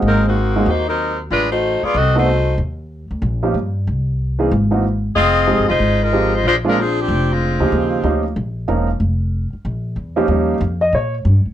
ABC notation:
X:1
M:4/4
L:1/8
Q:"Swing" 1/4=187
K:Bbdor
V:1 name="Saxophone section"
[_G,CEB] [E,B,C_G]3 [B,EGc] [G,CEB]2 z | [A,=DF_c] [=A,E^F=c]2 [_C=F_A=d] [=C^F=Ae] [A,EFc]3 | z8 | z8 |
[CFAe]3 [A,EFc]2 [A,EFB]2 [A,EFc] | [A,=DFc] [A,DFB] [F,CDA] [F,CDG]2 [A,CDF]3- | [A,C=DF]3 z4 z | z8 |
z8 |]
V:2 name="Grand piano"
[A,B,CE_G]2 z [A,B,CEG] z4 | z4 z [=A,_C=CE^F] z2 | z4 z [F,B,DEG] z2 | z3 [=E,B,C^D^G] z [E,B,CD_G] z2 |
z2 [F,A,CEG] z3 [F,A,CEG] z | z [A,B,C=DF] z4 z [_D,F,B,EG]- | [D,F,B,EG]2 [F,B,DEG] z3 [F,B,DEB] z | z6 z [F,B,DEG]- |
[F,B,DEG]2 z e d z3 |]
V:3 name="Grand piano" clef=bass
z8 | z8 | z8 | z8 |
z8 | z8 | z8 | z8 |
[F,G,D] z6 z |]
V:4 name="Upright bass" clef=bass
A,,,4 E,,4 | =A,,,3 z C,,4 | E,,3 =D,, B,,,2 G,,2 | C,,4 ^G,,,4 |
F,,,2- (3F,,, A,,, _F,,, A,,,4 | B,,,4 F,,,3 =D,, | E,,2 =D,,2 B,,,2 _F,,,2 | F,,,3 z B,,,2 _F,,2 |
E,,2 F,,2 B,,2 G,, z |]